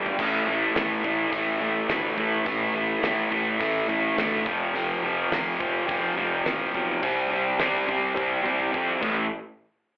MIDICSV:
0, 0, Header, 1, 4, 480
1, 0, Start_track
1, 0, Key_signature, 0, "minor"
1, 0, Tempo, 570342
1, 154, Time_signature, 4, 2, 24, 8
1, 8392, End_track
2, 0, Start_track
2, 0, Title_t, "Overdriven electric guitar"
2, 0, Program_c, 0, 29
2, 0, Note_on_c, 0, 43, 79
2, 0, Note_on_c, 0, 50, 90
2, 0, Note_on_c, 0, 55, 88
2, 147, Note_off_c, 0, 43, 0
2, 148, Note_off_c, 0, 50, 0
2, 151, Note_on_c, 0, 45, 73
2, 154, Note_off_c, 0, 55, 0
2, 158, Note_on_c, 0, 52, 86
2, 163, Note_on_c, 0, 57, 95
2, 392, Note_off_c, 0, 45, 0
2, 395, Note_on_c, 0, 45, 78
2, 397, Note_off_c, 0, 52, 0
2, 400, Note_off_c, 0, 57, 0
2, 400, Note_on_c, 0, 52, 80
2, 403, Note_on_c, 0, 57, 90
2, 635, Note_off_c, 0, 45, 0
2, 637, Note_off_c, 0, 52, 0
2, 638, Note_on_c, 0, 45, 75
2, 641, Note_on_c, 0, 52, 75
2, 646, Note_off_c, 0, 57, 0
2, 649, Note_on_c, 0, 57, 78
2, 866, Note_off_c, 0, 45, 0
2, 871, Note_off_c, 0, 52, 0
2, 876, Note_on_c, 0, 45, 72
2, 881, Note_off_c, 0, 57, 0
2, 881, Note_on_c, 0, 52, 88
2, 885, Note_on_c, 0, 57, 90
2, 1100, Note_off_c, 0, 45, 0
2, 1106, Note_off_c, 0, 52, 0
2, 1110, Note_on_c, 0, 45, 80
2, 1111, Note_off_c, 0, 57, 0
2, 1115, Note_on_c, 0, 57, 89
2, 1116, Note_on_c, 0, 52, 91
2, 1337, Note_off_c, 0, 45, 0
2, 1345, Note_off_c, 0, 52, 0
2, 1347, Note_on_c, 0, 45, 75
2, 1351, Note_off_c, 0, 57, 0
2, 1355, Note_on_c, 0, 57, 88
2, 1356, Note_on_c, 0, 52, 80
2, 1578, Note_off_c, 0, 45, 0
2, 1586, Note_off_c, 0, 52, 0
2, 1588, Note_on_c, 0, 45, 60
2, 1596, Note_on_c, 0, 52, 64
2, 1597, Note_off_c, 0, 57, 0
2, 1601, Note_on_c, 0, 57, 66
2, 1812, Note_off_c, 0, 45, 0
2, 1822, Note_on_c, 0, 45, 77
2, 1825, Note_off_c, 0, 52, 0
2, 1834, Note_off_c, 0, 57, 0
2, 1835, Note_on_c, 0, 52, 84
2, 1838, Note_on_c, 0, 57, 81
2, 2051, Note_off_c, 0, 45, 0
2, 2054, Note_off_c, 0, 52, 0
2, 2061, Note_on_c, 0, 45, 84
2, 2064, Note_on_c, 0, 52, 94
2, 2072, Note_off_c, 0, 57, 0
2, 2075, Note_on_c, 0, 57, 100
2, 2291, Note_off_c, 0, 45, 0
2, 2293, Note_off_c, 0, 52, 0
2, 2301, Note_on_c, 0, 45, 78
2, 2303, Note_on_c, 0, 52, 77
2, 2310, Note_off_c, 0, 57, 0
2, 2313, Note_on_c, 0, 57, 94
2, 2524, Note_off_c, 0, 45, 0
2, 2532, Note_off_c, 0, 52, 0
2, 2534, Note_on_c, 0, 45, 82
2, 2542, Note_on_c, 0, 52, 77
2, 2546, Note_off_c, 0, 57, 0
2, 2550, Note_on_c, 0, 57, 86
2, 2770, Note_off_c, 0, 45, 0
2, 2772, Note_off_c, 0, 52, 0
2, 2781, Note_on_c, 0, 45, 72
2, 2782, Note_on_c, 0, 52, 86
2, 2788, Note_off_c, 0, 57, 0
2, 2792, Note_on_c, 0, 57, 91
2, 3016, Note_off_c, 0, 45, 0
2, 3023, Note_off_c, 0, 52, 0
2, 3026, Note_on_c, 0, 45, 96
2, 3030, Note_off_c, 0, 57, 0
2, 3033, Note_on_c, 0, 52, 88
2, 3040, Note_on_c, 0, 57, 98
2, 3260, Note_off_c, 0, 45, 0
2, 3264, Note_off_c, 0, 52, 0
2, 3269, Note_off_c, 0, 57, 0
2, 3270, Note_on_c, 0, 45, 74
2, 3274, Note_on_c, 0, 52, 73
2, 3279, Note_on_c, 0, 57, 72
2, 3506, Note_off_c, 0, 45, 0
2, 3512, Note_off_c, 0, 52, 0
2, 3516, Note_on_c, 0, 45, 67
2, 3517, Note_off_c, 0, 57, 0
2, 3522, Note_on_c, 0, 52, 71
2, 3527, Note_on_c, 0, 57, 71
2, 3740, Note_on_c, 0, 41, 79
2, 3742, Note_off_c, 0, 45, 0
2, 3745, Note_off_c, 0, 52, 0
2, 3747, Note_off_c, 0, 57, 0
2, 3751, Note_on_c, 0, 48, 96
2, 3756, Note_on_c, 0, 53, 91
2, 3986, Note_off_c, 0, 41, 0
2, 3986, Note_off_c, 0, 48, 0
2, 3996, Note_off_c, 0, 53, 0
2, 3996, Note_on_c, 0, 41, 79
2, 3996, Note_on_c, 0, 48, 84
2, 4006, Note_on_c, 0, 53, 97
2, 4228, Note_off_c, 0, 41, 0
2, 4234, Note_off_c, 0, 48, 0
2, 4239, Note_on_c, 0, 41, 82
2, 4240, Note_off_c, 0, 53, 0
2, 4244, Note_on_c, 0, 48, 87
2, 4250, Note_on_c, 0, 53, 93
2, 4461, Note_off_c, 0, 41, 0
2, 4464, Note_off_c, 0, 48, 0
2, 4470, Note_off_c, 0, 53, 0
2, 4471, Note_on_c, 0, 41, 89
2, 4474, Note_on_c, 0, 48, 83
2, 4480, Note_on_c, 0, 53, 88
2, 4697, Note_off_c, 0, 41, 0
2, 4701, Note_off_c, 0, 48, 0
2, 4705, Note_off_c, 0, 53, 0
2, 4707, Note_on_c, 0, 41, 71
2, 4711, Note_on_c, 0, 48, 88
2, 4715, Note_on_c, 0, 53, 90
2, 4930, Note_off_c, 0, 41, 0
2, 4938, Note_off_c, 0, 48, 0
2, 4940, Note_off_c, 0, 53, 0
2, 4940, Note_on_c, 0, 41, 89
2, 4948, Note_on_c, 0, 48, 88
2, 4951, Note_on_c, 0, 53, 94
2, 5173, Note_off_c, 0, 41, 0
2, 5181, Note_off_c, 0, 48, 0
2, 5183, Note_on_c, 0, 41, 79
2, 5185, Note_off_c, 0, 53, 0
2, 5191, Note_on_c, 0, 48, 90
2, 5195, Note_on_c, 0, 53, 91
2, 5412, Note_off_c, 0, 41, 0
2, 5417, Note_off_c, 0, 48, 0
2, 5422, Note_on_c, 0, 41, 66
2, 5423, Note_off_c, 0, 53, 0
2, 5427, Note_on_c, 0, 48, 70
2, 5433, Note_on_c, 0, 53, 77
2, 5659, Note_off_c, 0, 41, 0
2, 5663, Note_off_c, 0, 48, 0
2, 5669, Note_on_c, 0, 41, 78
2, 5672, Note_off_c, 0, 53, 0
2, 5673, Note_on_c, 0, 48, 72
2, 5682, Note_on_c, 0, 53, 82
2, 5896, Note_off_c, 0, 48, 0
2, 5899, Note_off_c, 0, 41, 0
2, 5906, Note_off_c, 0, 53, 0
2, 5906, Note_on_c, 0, 48, 80
2, 5912, Note_on_c, 0, 55, 84
2, 5920, Note_on_c, 0, 60, 91
2, 6139, Note_off_c, 0, 48, 0
2, 6148, Note_off_c, 0, 55, 0
2, 6149, Note_on_c, 0, 48, 91
2, 6157, Note_off_c, 0, 60, 0
2, 6158, Note_on_c, 0, 55, 91
2, 6167, Note_on_c, 0, 60, 93
2, 6384, Note_off_c, 0, 48, 0
2, 6387, Note_off_c, 0, 55, 0
2, 6394, Note_on_c, 0, 48, 84
2, 6395, Note_off_c, 0, 60, 0
2, 6397, Note_on_c, 0, 55, 90
2, 6405, Note_on_c, 0, 60, 95
2, 6617, Note_off_c, 0, 48, 0
2, 6623, Note_off_c, 0, 55, 0
2, 6627, Note_on_c, 0, 48, 90
2, 6629, Note_off_c, 0, 60, 0
2, 6633, Note_on_c, 0, 55, 91
2, 6639, Note_on_c, 0, 60, 91
2, 6850, Note_off_c, 0, 48, 0
2, 6854, Note_off_c, 0, 55, 0
2, 6858, Note_off_c, 0, 60, 0
2, 6860, Note_on_c, 0, 48, 82
2, 6864, Note_on_c, 0, 55, 101
2, 6868, Note_on_c, 0, 60, 116
2, 7091, Note_off_c, 0, 48, 0
2, 7098, Note_off_c, 0, 55, 0
2, 7101, Note_off_c, 0, 60, 0
2, 7101, Note_on_c, 0, 48, 83
2, 7109, Note_on_c, 0, 55, 86
2, 7111, Note_on_c, 0, 60, 84
2, 7327, Note_off_c, 0, 48, 0
2, 7337, Note_on_c, 0, 48, 58
2, 7338, Note_off_c, 0, 55, 0
2, 7339, Note_off_c, 0, 60, 0
2, 7348, Note_on_c, 0, 55, 71
2, 7349, Note_on_c, 0, 60, 91
2, 7580, Note_off_c, 0, 48, 0
2, 7583, Note_off_c, 0, 55, 0
2, 7583, Note_on_c, 0, 45, 85
2, 7587, Note_on_c, 0, 52, 89
2, 7592, Note_off_c, 0, 60, 0
2, 7595, Note_on_c, 0, 57, 103
2, 7782, Note_off_c, 0, 45, 0
2, 7784, Note_off_c, 0, 52, 0
2, 7788, Note_off_c, 0, 57, 0
2, 8392, End_track
3, 0, Start_track
3, 0, Title_t, "Fingered electric bass"
3, 0, Program_c, 1, 33
3, 0, Note_on_c, 1, 31, 82
3, 161, Note_off_c, 1, 31, 0
3, 161, Note_on_c, 1, 33, 76
3, 323, Note_off_c, 1, 33, 0
3, 391, Note_on_c, 1, 33, 80
3, 555, Note_off_c, 1, 33, 0
3, 626, Note_on_c, 1, 33, 87
3, 793, Note_off_c, 1, 33, 0
3, 877, Note_on_c, 1, 33, 77
3, 1040, Note_off_c, 1, 33, 0
3, 1113, Note_on_c, 1, 33, 77
3, 1277, Note_off_c, 1, 33, 0
3, 1349, Note_on_c, 1, 33, 82
3, 1514, Note_off_c, 1, 33, 0
3, 1584, Note_on_c, 1, 38, 88
3, 1752, Note_off_c, 1, 38, 0
3, 1828, Note_on_c, 1, 45, 83
3, 1994, Note_off_c, 1, 45, 0
3, 2075, Note_on_c, 1, 33, 90
3, 2239, Note_off_c, 1, 33, 0
3, 2307, Note_on_c, 1, 33, 83
3, 2473, Note_off_c, 1, 33, 0
3, 2548, Note_on_c, 1, 33, 91
3, 2714, Note_off_c, 1, 33, 0
3, 2798, Note_on_c, 1, 33, 91
3, 2961, Note_off_c, 1, 33, 0
3, 3036, Note_on_c, 1, 33, 91
3, 3200, Note_off_c, 1, 33, 0
3, 3275, Note_on_c, 1, 33, 87
3, 3439, Note_off_c, 1, 33, 0
3, 3505, Note_on_c, 1, 38, 88
3, 3673, Note_off_c, 1, 38, 0
3, 3757, Note_on_c, 1, 29, 81
3, 3921, Note_off_c, 1, 29, 0
3, 3986, Note_on_c, 1, 29, 92
3, 4153, Note_off_c, 1, 29, 0
3, 4225, Note_on_c, 1, 29, 82
3, 4393, Note_off_c, 1, 29, 0
3, 4469, Note_on_c, 1, 29, 91
3, 4636, Note_off_c, 1, 29, 0
3, 4715, Note_on_c, 1, 29, 85
3, 4880, Note_off_c, 1, 29, 0
3, 4959, Note_on_c, 1, 29, 96
3, 5122, Note_off_c, 1, 29, 0
3, 5188, Note_on_c, 1, 29, 83
3, 5355, Note_off_c, 1, 29, 0
3, 5428, Note_on_c, 1, 33, 93
3, 5595, Note_off_c, 1, 33, 0
3, 5672, Note_on_c, 1, 35, 76
3, 5838, Note_off_c, 1, 35, 0
3, 5921, Note_on_c, 1, 36, 88
3, 6084, Note_off_c, 1, 36, 0
3, 6147, Note_on_c, 1, 36, 79
3, 6314, Note_off_c, 1, 36, 0
3, 6382, Note_on_c, 1, 36, 87
3, 6551, Note_off_c, 1, 36, 0
3, 6640, Note_on_c, 1, 36, 81
3, 6803, Note_off_c, 1, 36, 0
3, 6879, Note_on_c, 1, 36, 90
3, 7042, Note_off_c, 1, 36, 0
3, 7112, Note_on_c, 1, 36, 94
3, 7277, Note_off_c, 1, 36, 0
3, 7357, Note_on_c, 1, 41, 82
3, 7520, Note_off_c, 1, 41, 0
3, 7599, Note_on_c, 1, 33, 94
3, 7821, Note_off_c, 1, 33, 0
3, 8392, End_track
4, 0, Start_track
4, 0, Title_t, "Drums"
4, 52, Note_on_c, 9, 43, 91
4, 136, Note_off_c, 9, 43, 0
4, 159, Note_on_c, 9, 36, 102
4, 163, Note_on_c, 9, 49, 100
4, 244, Note_off_c, 9, 36, 0
4, 247, Note_off_c, 9, 49, 0
4, 639, Note_on_c, 9, 46, 51
4, 642, Note_on_c, 9, 38, 114
4, 723, Note_off_c, 9, 46, 0
4, 726, Note_off_c, 9, 38, 0
4, 878, Note_on_c, 9, 36, 84
4, 963, Note_off_c, 9, 36, 0
4, 1117, Note_on_c, 9, 36, 98
4, 1119, Note_on_c, 9, 46, 55
4, 1201, Note_off_c, 9, 36, 0
4, 1203, Note_off_c, 9, 46, 0
4, 1594, Note_on_c, 9, 46, 46
4, 1596, Note_on_c, 9, 38, 98
4, 1678, Note_off_c, 9, 46, 0
4, 1681, Note_off_c, 9, 38, 0
4, 1833, Note_on_c, 9, 36, 79
4, 1917, Note_off_c, 9, 36, 0
4, 2067, Note_on_c, 9, 46, 57
4, 2073, Note_on_c, 9, 36, 87
4, 2152, Note_off_c, 9, 46, 0
4, 2157, Note_off_c, 9, 36, 0
4, 2554, Note_on_c, 9, 46, 54
4, 2556, Note_on_c, 9, 38, 107
4, 2638, Note_off_c, 9, 46, 0
4, 2641, Note_off_c, 9, 38, 0
4, 2794, Note_on_c, 9, 36, 80
4, 2878, Note_off_c, 9, 36, 0
4, 3034, Note_on_c, 9, 36, 106
4, 3035, Note_on_c, 9, 46, 57
4, 3119, Note_off_c, 9, 36, 0
4, 3119, Note_off_c, 9, 46, 0
4, 3276, Note_on_c, 9, 36, 69
4, 3360, Note_off_c, 9, 36, 0
4, 3518, Note_on_c, 9, 46, 51
4, 3521, Note_on_c, 9, 38, 91
4, 3603, Note_off_c, 9, 46, 0
4, 3605, Note_off_c, 9, 38, 0
4, 3755, Note_on_c, 9, 36, 104
4, 3839, Note_off_c, 9, 36, 0
4, 4001, Note_on_c, 9, 46, 54
4, 4085, Note_off_c, 9, 46, 0
4, 4477, Note_on_c, 9, 46, 61
4, 4480, Note_on_c, 9, 38, 97
4, 4561, Note_off_c, 9, 46, 0
4, 4564, Note_off_c, 9, 38, 0
4, 4717, Note_on_c, 9, 36, 88
4, 4801, Note_off_c, 9, 36, 0
4, 4957, Note_on_c, 9, 46, 56
4, 4958, Note_on_c, 9, 36, 109
4, 5041, Note_off_c, 9, 46, 0
4, 5042, Note_off_c, 9, 36, 0
4, 5436, Note_on_c, 9, 46, 49
4, 5438, Note_on_c, 9, 38, 106
4, 5520, Note_off_c, 9, 46, 0
4, 5523, Note_off_c, 9, 38, 0
4, 5676, Note_on_c, 9, 36, 75
4, 5760, Note_off_c, 9, 36, 0
4, 5917, Note_on_c, 9, 36, 112
4, 5919, Note_on_c, 9, 46, 58
4, 6001, Note_off_c, 9, 36, 0
4, 6003, Note_off_c, 9, 46, 0
4, 6391, Note_on_c, 9, 46, 59
4, 6393, Note_on_c, 9, 38, 102
4, 6475, Note_off_c, 9, 46, 0
4, 6477, Note_off_c, 9, 38, 0
4, 6637, Note_on_c, 9, 36, 74
4, 6721, Note_off_c, 9, 36, 0
4, 6878, Note_on_c, 9, 36, 120
4, 6962, Note_off_c, 9, 36, 0
4, 7117, Note_on_c, 9, 36, 69
4, 7201, Note_off_c, 9, 36, 0
4, 7239, Note_on_c, 9, 36, 65
4, 7323, Note_off_c, 9, 36, 0
4, 7358, Note_on_c, 9, 36, 73
4, 7442, Note_off_c, 9, 36, 0
4, 7597, Note_on_c, 9, 36, 98
4, 7598, Note_on_c, 9, 49, 83
4, 7681, Note_off_c, 9, 36, 0
4, 7682, Note_off_c, 9, 49, 0
4, 8392, End_track
0, 0, End_of_file